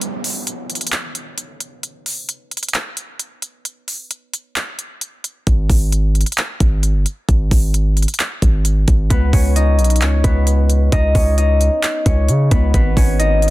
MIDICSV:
0, 0, Header, 1, 5, 480
1, 0, Start_track
1, 0, Tempo, 454545
1, 15, Time_signature, 4, 2, 24, 8
1, 14258, End_track
2, 0, Start_track
2, 0, Title_t, "Harp"
2, 0, Program_c, 0, 46
2, 0, Note_on_c, 0, 59, 70
2, 0, Note_on_c, 0, 61, 58
2, 441, Note_off_c, 0, 61, 0
2, 1141, Note_off_c, 0, 59, 0
2, 9609, Note_on_c, 0, 71, 102
2, 9618, Note_on_c, 0, 59, 74
2, 9857, Note_on_c, 0, 73, 77
2, 9864, Note_on_c, 0, 61, 69
2, 10092, Note_on_c, 0, 75, 77
2, 10101, Note_on_c, 0, 63, 56
2, 10568, Note_off_c, 0, 73, 0
2, 10572, Note_on_c, 0, 73, 78
2, 10577, Note_off_c, 0, 61, 0
2, 10581, Note_on_c, 0, 61, 61
2, 10810, Note_off_c, 0, 71, 0
2, 10815, Note_on_c, 0, 71, 90
2, 10819, Note_off_c, 0, 59, 0
2, 10823, Note_on_c, 0, 59, 65
2, 11534, Note_off_c, 0, 75, 0
2, 11539, Note_on_c, 0, 75, 103
2, 11543, Note_off_c, 0, 63, 0
2, 11547, Note_on_c, 0, 63, 77
2, 11769, Note_off_c, 0, 73, 0
2, 11773, Note_on_c, 0, 73, 88
2, 11777, Note_off_c, 0, 61, 0
2, 11782, Note_on_c, 0, 61, 64
2, 12009, Note_off_c, 0, 75, 0
2, 12013, Note_on_c, 0, 75, 84
2, 12017, Note_off_c, 0, 63, 0
2, 12022, Note_on_c, 0, 63, 63
2, 12729, Note_off_c, 0, 73, 0
2, 12733, Note_on_c, 0, 73, 70
2, 12736, Note_off_c, 0, 61, 0
2, 12740, Note_on_c, 0, 61, 55
2, 12978, Note_off_c, 0, 71, 0
2, 13213, Note_on_c, 0, 71, 80
2, 13218, Note_off_c, 0, 59, 0
2, 13222, Note_on_c, 0, 59, 68
2, 13452, Note_off_c, 0, 71, 0
2, 13456, Note_on_c, 0, 71, 98
2, 13461, Note_off_c, 0, 59, 0
2, 13465, Note_on_c, 0, 59, 76
2, 13688, Note_off_c, 0, 73, 0
2, 13692, Note_on_c, 0, 73, 80
2, 13696, Note_off_c, 0, 61, 0
2, 13700, Note_on_c, 0, 61, 67
2, 13897, Note_off_c, 0, 75, 0
2, 13931, Note_on_c, 0, 75, 92
2, 13936, Note_off_c, 0, 63, 0
2, 13940, Note_on_c, 0, 63, 71
2, 14258, Note_off_c, 0, 59, 0
2, 14258, Note_off_c, 0, 61, 0
2, 14258, Note_off_c, 0, 63, 0
2, 14258, Note_off_c, 0, 71, 0
2, 14258, Note_off_c, 0, 73, 0
2, 14258, Note_off_c, 0, 75, 0
2, 14258, End_track
3, 0, Start_track
3, 0, Title_t, "808-style bass"
3, 0, Program_c, 1, 38
3, 5775, Note_on_c, 1, 32, 114
3, 6005, Note_off_c, 1, 32, 0
3, 6015, Note_on_c, 1, 32, 104
3, 6591, Note_off_c, 1, 32, 0
3, 6974, Note_on_c, 1, 32, 107
3, 7334, Note_on_c, 1, 31, 96
3, 7350, Note_off_c, 1, 32, 0
3, 7449, Note_off_c, 1, 31, 0
3, 7694, Note_on_c, 1, 32, 115
3, 7925, Note_off_c, 1, 32, 0
3, 7934, Note_on_c, 1, 32, 106
3, 8511, Note_off_c, 1, 32, 0
3, 8894, Note_on_c, 1, 32, 102
3, 9355, Note_off_c, 1, 32, 0
3, 9375, Note_on_c, 1, 32, 108
3, 9605, Note_off_c, 1, 32, 0
3, 9615, Note_on_c, 1, 37, 109
3, 9845, Note_off_c, 1, 37, 0
3, 9854, Note_on_c, 1, 37, 104
3, 10335, Note_on_c, 1, 35, 105
3, 10351, Note_off_c, 1, 37, 0
3, 10574, Note_on_c, 1, 37, 97
3, 10590, Note_off_c, 1, 35, 0
3, 10803, Note_off_c, 1, 37, 0
3, 10815, Note_on_c, 1, 37, 104
3, 11506, Note_off_c, 1, 37, 0
3, 11535, Note_on_c, 1, 37, 112
3, 11765, Note_off_c, 1, 37, 0
3, 11774, Note_on_c, 1, 37, 102
3, 12351, Note_off_c, 1, 37, 0
3, 12735, Note_on_c, 1, 37, 109
3, 12975, Note_on_c, 1, 49, 98
3, 12990, Note_off_c, 1, 37, 0
3, 13203, Note_off_c, 1, 49, 0
3, 13215, Note_on_c, 1, 37, 108
3, 13446, Note_off_c, 1, 37, 0
3, 13454, Note_on_c, 1, 32, 112
3, 13685, Note_off_c, 1, 32, 0
3, 13695, Note_on_c, 1, 32, 102
3, 14258, Note_off_c, 1, 32, 0
3, 14258, End_track
4, 0, Start_track
4, 0, Title_t, "Downlifter"
4, 0, Program_c, 2, 103
4, 0, Note_on_c, 2, 60, 85
4, 1935, Note_off_c, 2, 60, 0
4, 14258, End_track
5, 0, Start_track
5, 0, Title_t, "Drums"
5, 16, Note_on_c, 9, 42, 71
5, 121, Note_off_c, 9, 42, 0
5, 256, Note_on_c, 9, 46, 86
5, 361, Note_off_c, 9, 46, 0
5, 496, Note_on_c, 9, 42, 84
5, 602, Note_off_c, 9, 42, 0
5, 735, Note_on_c, 9, 42, 47
5, 795, Note_off_c, 9, 42, 0
5, 795, Note_on_c, 9, 42, 59
5, 855, Note_off_c, 9, 42, 0
5, 855, Note_on_c, 9, 42, 72
5, 915, Note_off_c, 9, 42, 0
5, 915, Note_on_c, 9, 42, 81
5, 974, Note_on_c, 9, 39, 106
5, 1021, Note_off_c, 9, 42, 0
5, 1079, Note_off_c, 9, 39, 0
5, 1215, Note_on_c, 9, 42, 83
5, 1320, Note_off_c, 9, 42, 0
5, 1453, Note_on_c, 9, 42, 79
5, 1559, Note_off_c, 9, 42, 0
5, 1694, Note_on_c, 9, 42, 74
5, 1800, Note_off_c, 9, 42, 0
5, 1935, Note_on_c, 9, 42, 71
5, 2041, Note_off_c, 9, 42, 0
5, 2175, Note_on_c, 9, 46, 84
5, 2281, Note_off_c, 9, 46, 0
5, 2416, Note_on_c, 9, 42, 89
5, 2521, Note_off_c, 9, 42, 0
5, 2655, Note_on_c, 9, 42, 47
5, 2715, Note_off_c, 9, 42, 0
5, 2715, Note_on_c, 9, 42, 59
5, 2774, Note_off_c, 9, 42, 0
5, 2774, Note_on_c, 9, 42, 72
5, 2835, Note_off_c, 9, 42, 0
5, 2835, Note_on_c, 9, 42, 82
5, 2894, Note_on_c, 9, 39, 105
5, 2895, Note_off_c, 9, 42, 0
5, 2895, Note_on_c, 9, 42, 78
5, 3000, Note_off_c, 9, 39, 0
5, 3001, Note_off_c, 9, 42, 0
5, 3135, Note_on_c, 9, 42, 78
5, 3241, Note_off_c, 9, 42, 0
5, 3374, Note_on_c, 9, 42, 83
5, 3479, Note_off_c, 9, 42, 0
5, 3614, Note_on_c, 9, 42, 74
5, 3720, Note_off_c, 9, 42, 0
5, 3856, Note_on_c, 9, 42, 73
5, 3961, Note_off_c, 9, 42, 0
5, 4096, Note_on_c, 9, 46, 87
5, 4202, Note_off_c, 9, 46, 0
5, 4337, Note_on_c, 9, 42, 85
5, 4442, Note_off_c, 9, 42, 0
5, 4578, Note_on_c, 9, 42, 76
5, 4684, Note_off_c, 9, 42, 0
5, 4815, Note_on_c, 9, 39, 102
5, 4816, Note_on_c, 9, 42, 79
5, 4921, Note_off_c, 9, 39, 0
5, 4921, Note_off_c, 9, 42, 0
5, 5055, Note_on_c, 9, 42, 81
5, 5161, Note_off_c, 9, 42, 0
5, 5294, Note_on_c, 9, 42, 80
5, 5400, Note_off_c, 9, 42, 0
5, 5535, Note_on_c, 9, 42, 74
5, 5641, Note_off_c, 9, 42, 0
5, 5775, Note_on_c, 9, 36, 109
5, 5775, Note_on_c, 9, 42, 70
5, 5881, Note_off_c, 9, 36, 0
5, 5881, Note_off_c, 9, 42, 0
5, 6015, Note_on_c, 9, 36, 92
5, 6016, Note_on_c, 9, 46, 87
5, 6120, Note_off_c, 9, 36, 0
5, 6121, Note_off_c, 9, 46, 0
5, 6256, Note_on_c, 9, 42, 85
5, 6362, Note_off_c, 9, 42, 0
5, 6495, Note_on_c, 9, 42, 47
5, 6554, Note_off_c, 9, 42, 0
5, 6554, Note_on_c, 9, 42, 57
5, 6614, Note_off_c, 9, 42, 0
5, 6614, Note_on_c, 9, 42, 70
5, 6674, Note_off_c, 9, 42, 0
5, 6674, Note_on_c, 9, 42, 82
5, 6734, Note_off_c, 9, 42, 0
5, 6734, Note_on_c, 9, 39, 105
5, 6734, Note_on_c, 9, 42, 77
5, 6839, Note_off_c, 9, 39, 0
5, 6840, Note_off_c, 9, 42, 0
5, 6974, Note_on_c, 9, 36, 89
5, 6974, Note_on_c, 9, 42, 79
5, 7079, Note_off_c, 9, 42, 0
5, 7080, Note_off_c, 9, 36, 0
5, 7213, Note_on_c, 9, 42, 81
5, 7319, Note_off_c, 9, 42, 0
5, 7453, Note_on_c, 9, 42, 74
5, 7559, Note_off_c, 9, 42, 0
5, 7694, Note_on_c, 9, 36, 105
5, 7694, Note_on_c, 9, 42, 74
5, 7800, Note_off_c, 9, 36, 0
5, 7800, Note_off_c, 9, 42, 0
5, 7934, Note_on_c, 9, 36, 95
5, 7934, Note_on_c, 9, 46, 85
5, 8040, Note_off_c, 9, 36, 0
5, 8040, Note_off_c, 9, 46, 0
5, 8175, Note_on_c, 9, 42, 86
5, 8281, Note_off_c, 9, 42, 0
5, 8414, Note_on_c, 9, 42, 46
5, 8474, Note_off_c, 9, 42, 0
5, 8474, Note_on_c, 9, 42, 60
5, 8534, Note_off_c, 9, 42, 0
5, 8534, Note_on_c, 9, 42, 72
5, 8594, Note_off_c, 9, 42, 0
5, 8594, Note_on_c, 9, 42, 82
5, 8654, Note_off_c, 9, 42, 0
5, 8654, Note_on_c, 9, 39, 104
5, 8654, Note_on_c, 9, 42, 76
5, 8759, Note_off_c, 9, 39, 0
5, 8760, Note_off_c, 9, 42, 0
5, 8894, Note_on_c, 9, 36, 94
5, 8894, Note_on_c, 9, 42, 83
5, 9000, Note_off_c, 9, 36, 0
5, 9000, Note_off_c, 9, 42, 0
5, 9133, Note_on_c, 9, 42, 80
5, 9239, Note_off_c, 9, 42, 0
5, 9373, Note_on_c, 9, 42, 75
5, 9375, Note_on_c, 9, 36, 97
5, 9479, Note_off_c, 9, 42, 0
5, 9481, Note_off_c, 9, 36, 0
5, 9614, Note_on_c, 9, 42, 70
5, 9615, Note_on_c, 9, 36, 103
5, 9720, Note_off_c, 9, 36, 0
5, 9720, Note_off_c, 9, 42, 0
5, 9854, Note_on_c, 9, 36, 93
5, 9855, Note_on_c, 9, 46, 86
5, 9960, Note_off_c, 9, 36, 0
5, 9960, Note_off_c, 9, 46, 0
5, 10096, Note_on_c, 9, 42, 86
5, 10201, Note_off_c, 9, 42, 0
5, 10335, Note_on_c, 9, 42, 48
5, 10396, Note_off_c, 9, 42, 0
5, 10396, Note_on_c, 9, 42, 59
5, 10456, Note_off_c, 9, 42, 0
5, 10456, Note_on_c, 9, 42, 69
5, 10515, Note_off_c, 9, 42, 0
5, 10515, Note_on_c, 9, 42, 80
5, 10574, Note_on_c, 9, 39, 104
5, 10575, Note_off_c, 9, 42, 0
5, 10575, Note_on_c, 9, 42, 79
5, 10680, Note_off_c, 9, 39, 0
5, 10681, Note_off_c, 9, 42, 0
5, 10815, Note_on_c, 9, 36, 92
5, 10816, Note_on_c, 9, 42, 78
5, 10920, Note_off_c, 9, 36, 0
5, 10921, Note_off_c, 9, 42, 0
5, 11055, Note_on_c, 9, 42, 83
5, 11160, Note_off_c, 9, 42, 0
5, 11295, Note_on_c, 9, 42, 72
5, 11400, Note_off_c, 9, 42, 0
5, 11535, Note_on_c, 9, 36, 106
5, 11535, Note_on_c, 9, 42, 73
5, 11640, Note_off_c, 9, 36, 0
5, 11641, Note_off_c, 9, 42, 0
5, 11774, Note_on_c, 9, 36, 92
5, 11774, Note_on_c, 9, 46, 85
5, 11880, Note_off_c, 9, 36, 0
5, 11880, Note_off_c, 9, 46, 0
5, 12016, Note_on_c, 9, 42, 85
5, 12122, Note_off_c, 9, 42, 0
5, 12257, Note_on_c, 9, 42, 78
5, 12363, Note_off_c, 9, 42, 0
5, 12494, Note_on_c, 9, 39, 105
5, 12495, Note_on_c, 9, 42, 78
5, 12600, Note_off_c, 9, 39, 0
5, 12601, Note_off_c, 9, 42, 0
5, 12734, Note_on_c, 9, 36, 94
5, 12734, Note_on_c, 9, 42, 81
5, 12840, Note_off_c, 9, 36, 0
5, 12840, Note_off_c, 9, 42, 0
5, 12973, Note_on_c, 9, 42, 78
5, 13079, Note_off_c, 9, 42, 0
5, 13214, Note_on_c, 9, 42, 75
5, 13215, Note_on_c, 9, 36, 100
5, 13320, Note_off_c, 9, 42, 0
5, 13321, Note_off_c, 9, 36, 0
5, 13455, Note_on_c, 9, 36, 107
5, 13455, Note_on_c, 9, 42, 73
5, 13560, Note_off_c, 9, 36, 0
5, 13560, Note_off_c, 9, 42, 0
5, 13694, Note_on_c, 9, 36, 96
5, 13696, Note_on_c, 9, 46, 88
5, 13800, Note_off_c, 9, 36, 0
5, 13801, Note_off_c, 9, 46, 0
5, 13936, Note_on_c, 9, 42, 87
5, 14042, Note_off_c, 9, 42, 0
5, 14175, Note_on_c, 9, 42, 48
5, 14258, Note_off_c, 9, 42, 0
5, 14258, End_track
0, 0, End_of_file